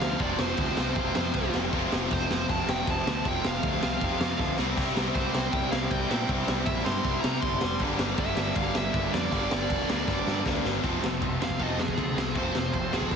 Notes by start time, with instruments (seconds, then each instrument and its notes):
Already playing: distorted electric guitar F2 C3 F3, overdriven electric guitar F3 A3 C4 F4, lead electric guitar F5
0.01 picked electric bass D2, snare
0.19 picked electric bass F1, distorted electric guitar F2 C3 F3, overdriven electric guitar F3 A3 C4 F4, lead electric guitar D5, kick, crash
0.38 picked electric bass F1, lead electric guitar C5, snare
0.57 picked electric bass D2, kick, crash
0.77 picked electric bass C2, overdriven electric guitar F3 A3 C4 F4, lead electric guitar C5, snare
0.95 picked electric bass F1, distorted electric guitar F2 C3 F3, kick, crash
1.15 picked electric bass F2, snare
1.33 picked electric bass C2, kick, crash
1.54 picked electric bass F1, snare
1.72 picked electric bass F1, distorted electric guitar F2 C3 F3, overdriven electric guitar F3 A3 C4 F4, kick, crash
1.92 picked electric bass F1, snare
2.11 picked electric bass F1, lead electric guitar C5, kick, crash
2.30 picked electric bass F1, overdriven electric guitar F3 A3 C4 F4, lead electric guitar C5, snare
2.48 picked electric bass F1, distorted electric guitar F2 C3 F3, lead electric guitar A5, kick, crash
2.68 picked electric bass F1, lead electric guitar G5, snare
2.87 picked electric bass F1, lead electric guitar A5, kick, crash
3.06 picked electric bass D2, snare
3.25 picked electric bass F1, distorted electric guitar F2 C3 F3, overdriven electric guitar F3 A3 C4 F4, lead electric guitar G5, kick, crash
3.45 picked electric bass F1, lead electric guitar F5, snare
3.63 picked electric bass D2, kick, crash
3.81 picked electric bass C2, overdriven electric guitar F3 A3 C4 F4, lead electric guitar F5, snare
4.01 picked electric bass F1, distorted electric guitar F2 C3 F3, kick, crash
4.20 picked electric bass F2, snare
4.39 picked electric bass D2, kick, snare
4.58 picked electric bass C2, overdriven electric guitar C3 G3 C4 E4, distorted electric guitar C3 G3 C4, snare
4.77 picked electric bass C2, kick, splash, crash
4.96 picked electric bass C2, snare
5.15 picked electric bass C2, overdriven electric guitar C3 G3 C4 E4, lead electric guitar C5, kick, crash
5.33 picked electric bass C2, distorted electric guitar C3 G3 C4, snare
5.52 picked electric bass C2, lead electric guitar G5, kick, crash
5.71 picked electric bass C2, lead electric guitar F5, snare
5.91 picked electric bass C2, lead electric guitar G5, kick, crash
6.10 picked electric bass A#2, distorted electric guitar C3 G3 C4, overdriven electric guitar C3 G3 C4 E4, snare
6.29 picked electric bass C2, kick, crash
6.48 picked electric bass C2, snare
6.66 picked electric bass A#1, overdriven electric guitar C3 G3 C4, lead electric guitar E5, kick, crash
6.70 overdriven electric guitar E4
6.85 picked electric bass G2, distorted electric guitar C3 G3 C4, lead electric guitar C6, snare
7.04 picked electric bass C2, kick, crash
7.21 picked electric bass C3, lead electric guitar A#5, snare
7.40 picked electric bass G1, lead electric guitar C6, kick, crash
7.61 picked electric bass F1, snare
7.79 picked electric bass G1, distorted electric guitar G2 D3 G3, overdriven electric guitar G2 D3 G3 A#3 D4, kick, crash
7.99 picked electric bass G1, snare
8.18 picked electric bass G1, lead electric guitar E5, kick, crash
8.37 picked electric bass G1, overdriven electric guitar G2 D3 G3 A#3 D4, snare
8.55 picked electric bass G1, distorted electric guitar G2 D3 G3, lead electric guitar F5, kick, crash
8.75 picked electric bass G1, lead electric guitar E5, snare
8.94 picked electric bass G1, kick, crash
9.13 picked electric bass F2, lead electric guitar D5, snare
9.31 picked electric bass G1, overdriven electric guitar G2 D3 G3 A#3 D4, distorted electric guitar G2 D3 G3, kick, crash
9.51 picked electric bass G1, snare
9.70 picked electric bass F1, kick, crash
9.88 picked electric bass D2, overdriven electric guitar G2 D3 G3 A#3 D4, snare
10.08 picked electric bass G1, distorted electric guitar G2 D3 G3, kick, snare
10.26 picked electric bass G2, snare
10.46 picked electric bass D2, kick, snare
10.64 picked electric bass G1, snare
10.83 picked electric bass F1, distorted electric guitar F2 C3 F3, overdriven electric guitar F3 A3 C4 F4 A4, kick, ride
11.02 picked electric bass F1, distorted electric guitar F2 C3, snare
11.21 picked electric bass F1, distorted electric guitar F2 C3, overdriven electric guitar F3 A3 C4 F4 A4, kick, ride
11.39 picked electric bass F1, distorted electric guitar F2 C3, overdriven electric guitar F3 A3 C4 F4 A4, snare
11.44 lead electric guitar F5
11.50 kick
11.58 picked electric bass F1, distorted electric guitar F2 C3 F3, overdriven electric guitar F3 A3 C4 F4 A4, kick, ride
11.63 lead electric guitar D#5
11.78 picked electric bass F2, distorted electric guitar F2 C3, lead electric guitar G#4, snare
11.88 kick
11.97 picked electric bass D2, distorted electric guitar F2 C3, overdriven electric guitar F3 A3 C4 F4 A4, kick, ride
12.16 picked electric bass C2, distorted electric guitar F2 C3, overdriven electric guitar F3 A3 C4 F4 A4, snare
12.35 picked electric bass F1, distorted electric guitar F2 C3 F3, overdriven electric guitar F3 A3 C4 F4 A4, lead electric guitar C5, kick, ride
12.55 picked electric bass F1, distorted electric guitar F2 C3, snare
12.73 picked electric bass F1, distorted electric guitar F2 C3, overdriven electric guitar F3 A3 C4 F4 A4, kick, ride
12.92 picked electric bass F1, distorted electric guitar F2 C3 F3, overdriven electric guitar F3 A3 C4 F4 A4, lead electric guitar G#4, snare
13.02 kick
13.11 picked electric bass F1, distorted electric guitar F2 C3, overdriven electric guitar F3 A3 C4 F4, kick, ride